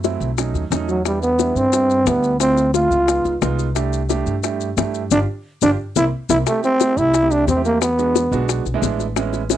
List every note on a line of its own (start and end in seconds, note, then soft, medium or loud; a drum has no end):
0.00 0.15 F#2 medium
0.04 0.28 F#3 medium
0.04 0.28 A3 medium
0.04 0.28 C4 medium
0.04 0.28 E4 medium
0.04 high bongo medium
0.04 maracas medium
0.20 0.52 B1 medium
0.20 maracas soft
0.38 0.61 F#3 medium
0.38 0.62 A3 medium
0.38 0.62 C#4 medium
0.38 0.62 D#4 medium
0.38 high bongo medium
0.38 maracas medium
0.54 0.70 D#2 medium
0.54 high bongo soft
0.54 maracas soft
0.71 1.50 E2 medium
0.71 0.95 F#3 medium
0.71 0.95 A3 medium
0.71 0.95 C#4 medium
0.71 0.96 D#4 medium
0.71 high bongo medium
0.71 low bongo medium
0.71 maracas medium
0.89 1.05 F#3 medium
0.89 high bongo soft
0.89 maracas soft
1.05 1.29 G3 medium
1.05 1.22 G3 medium
1.05 1.29 B3 medium
1.05 1.29 D4 medium
1.05 1.29 E4 medium
1.05 high bongo medium
1.05 maracas medium
1.23 1.58 B3 medium
1.23 maracas soft
1.39 1.63 G3 medium
1.39 1.63 B3 medium
1.39 1.63 D4 medium
1.39 1.63 E4 medium
1.39 high bongo medium
1.39 maracas medium
1.55 2.03 G2 medium
1.55 2.09 C4 medium
1.55 maracas soft
1.73 1.97 G3 medium
1.73 1.97 B3 medium
1.73 1.97 D4 medium
1.73 1.97 E4 medium
1.73 high bongo medium
1.73 maracas medium
1.90 maracas soft
2.06 2.85 D2 medium
2.06 2.30 G3 medium
2.06 2.30 B3 medium
2.06 2.40 B3 medium
2.06 2.30 D4 medium
2.06 2.31 E4 medium
2.06 high bongo medium
2.06 low bongo medium
2.06 maracas medium
2.24 maracas soft
2.40 2.64 A3 medium
2.40 2.72 C4 medium
2.40 2.64 C4 medium
2.40 2.64 E4 medium
2.40 2.65 F4 medium
2.40 high bongo medium
2.40 maracas medium
2.57 high bongo soft
2.57 maracas soft
2.74 2.98 A3 medium
2.74 2.98 C4 medium
2.74 2.98 E4 medium
2.74 2.98 F4 medium
2.74 3.38 F4 medium
2.74 high bongo medium
2.74 maracas medium
2.91 3.22 C#2 medium
2.91 maracas soft
3.08 3.32 G#3 medium
3.08 3.32 B3 medium
3.08 3.32 D#4 medium
3.08 3.32 F4 medium
3.08 high bongo medium
3.08 maracas medium
3.25 3.41 C#2 medium
3.25 high bongo soft
3.25 maracas soft
3.42 4.21 C2 medium
3.42 3.66 G#3 medium
3.42 3.66 B3 medium
3.42 3.66 D#4 medium
3.42 3.66 F4 medium
3.42 high bongo medium
3.42 low bongo medium
3.42 maracas medium
3.59 high bongo soft
3.59 maracas soft
3.75 3.99 A3 medium
3.75 4.00 D4 medium
3.75 4.00 E4 medium
3.75 4.00 G4 medium
3.75 high bongo medium
3.75 maracas medium
3.93 maracas soft
4.09 4.33 A3 medium
4.09 4.33 D4 medium
4.09 4.33 E4 medium
4.09 4.33 G4 medium
4.09 high bongo medium
4.09 maracas medium
4.26 4.74 G2 medium
4.26 maracas soft
4.43 4.67 A3 medium
4.43 4.67 D4 medium
4.43 4.67 E4 medium
4.43 4.67 G4 medium
4.43 high bongo medium
4.43 maracas medium
4.61 maracas soft
4.77 5.09 G2 medium
4.77 5.01 A3 medium
4.77 5.01 D4 medium
4.77 5.01 E4 medium
4.77 5.01 G4 medium
4.77 high bongo medium
4.77 low bongo medium
4.77 maracas medium
4.94 maracas soft
5.11 5.24 G1 medium
5.11 5.20 D4 medium
5.11 5.22 D4 medium
5.11 5.22 F4 medium
5.11 5.22 G4 medium
5.11 low bongo medium
5.11 maracas medium
5.62 5.74 G1 medium
5.62 5.73 D4 medium
5.62 5.71 D4 medium
5.62 5.73 F4 medium
5.62 5.73 G4 medium
5.62 low bongo medium
5.62 maracas medium
5.96 6.08 C2 medium
5.96 6.07 A#3 medium
5.96 6.07 C4 medium
5.96 6.07 E4 medium
5.96 6.05 E4 medium
5.96 low bongo medium
5.96 maracas medium
6.29 6.42 C2 medium
6.29 6.41 A#3 medium
6.29 6.41 C4 medium
6.29 6.41 E4 medium
6.29 6.38 E4 medium
6.29 low bongo medium
6.29 maracas loud
6.46 6.70 A3 medium
6.46 6.63 A3 medium
6.46 6.70 C4 medium
6.46 6.70 E4 medium
6.46 6.70 G4 medium
6.46 high bongo medium
6.46 maracas medium
6.64 7.00 C4 loud
6.64 high bongo soft
6.64 maracas soft
6.80 7.10 A3 medium
6.80 7.10 C4 medium
6.80 7.10 E4 medium
6.80 7.10 G4 medium
6.80 high bongo medium
6.80 maracas medium
6.97 7.44 C2 medium
6.97 7.33 E4 loud
6.97 maracas soft
7.14 high bongo medium
7.14 maracas medium
7.23 7.46 A3 medium
7.23 7.46 C4 medium
7.23 7.46 E4 medium
7.23 7.46 G4 medium
7.31 7.48 D4 medium
7.31 high bongo soft
7.31 maracas soft
7.47 8.26 E2 medium
7.47 7.64 C4 medium
7.47 high bongo soft
7.47 low bongo medium
7.47 maracas medium
7.56 7.82 A3 medium
7.56 7.82 C4 medium
7.56 7.82 E4 medium
7.56 7.82 G4 medium
7.65 7.81 A#3 medium
7.65 high bongo soft
7.65 maracas soft
7.82 8.45 B3 medium
7.82 high bongo medium
7.82 maracas medium
7.98 8.22 G#3 medium
7.98 8.22 B3 medium
7.98 8.22 D4 medium
7.98 8.22 F#4 medium
7.98 high bongo soft
7.98 maracas soft
8.16 high bongo medium
8.16 maracas medium
8.31 8.63 B1 medium
8.31 8.62 G#3 medium
8.31 8.62 B3 medium
8.31 8.62 D4 medium
8.31 8.62 F#4 loud
8.31 maracas soft
8.49 high bongo medium
8.49 maracas medium
8.65 8.81 B1 medium
8.65 high bongo soft
8.65 maracas soft
8.74 9.04 G#3 loud
8.74 9.04 B3 medium
8.74 9.04 D4 medium
8.74 9.04 E4 loud
8.82 9.57 A1 medium
8.82 high bongo soft
8.82 low bongo medium
8.82 maracas medium
9.00 high bongo soft
9.00 maracas soft
9.16 9.40 G#3 medium
9.16 9.40 B3 medium
9.16 9.40 C#4 medium
9.16 9.40 E4 loud
9.16 high bongo medium
9.16 maracas medium
9.33 high bongo soft
9.33 maracas soft
9.50 9.57 G#3 medium
9.50 9.57 B3 medium
9.50 9.57 C#4 medium
9.50 9.57 E4 medium
9.50 high bongo medium
9.50 maracas medium